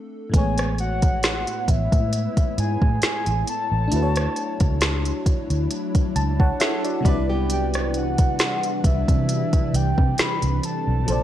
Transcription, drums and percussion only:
0.34 kick, closed hi-hat
0.58 cross-stick, closed hi-hat
0.78 closed hi-hat
1.02 kick, closed hi-hat
1.23 snare, closed hi-hat
1.47 closed hi-hat
1.68 kick, closed hi-hat
1.92 kick, closed hi-hat
2.13 closed hi-hat
2.37 kick, closed hi-hat
2.58 closed hi-hat
2.82 kick
3.02 snare, closed hi-hat
3.26 closed hi-hat
3.47 closed hi-hat
3.92 closed hi-hat
4.16 cross-stick, closed hi-hat
4.36 closed hi-hat
4.60 kick, closed hi-hat
4.81 snare, closed hi-hat
5.05 closed hi-hat
5.26 kick, closed hi-hat
5.50 closed hi-hat
5.71 closed hi-hat
5.95 kick, closed hi-hat
6.16 closed hi-hat
6.40 kick
6.60 snare, closed hi-hat
6.85 closed hi-hat
7.05 kick, closed hi-hat
7.50 closed hi-hat
7.74 cross-stick, closed hi-hat
7.94 closed hi-hat
8.18 kick, closed hi-hat
8.39 snare, closed hi-hat
8.63 closed hi-hat
8.84 kick, closed hi-hat
9.08 kick, closed hi-hat
9.29 closed hi-hat
9.53 kick, closed hi-hat
9.74 closed hi-hat
9.98 kick
10.18 snare, closed hi-hat
10.42 closed hi-hat
10.63 closed hi-hat
11.08 closed hi-hat

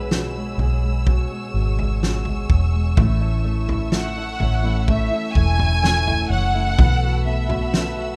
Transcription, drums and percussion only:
0.11 snare
0.59 floor tom
1.06 kick, floor tom
1.79 floor tom
2.03 snare
2.25 floor tom
2.50 kick
2.97 kick, floor tom
3.69 floor tom
3.92 snare
4.40 floor tom
4.88 kick, floor tom
5.35 kick
5.59 floor tom
5.84 snare
6.07 floor tom
6.79 kick, floor tom
7.50 floor tom
7.74 snare

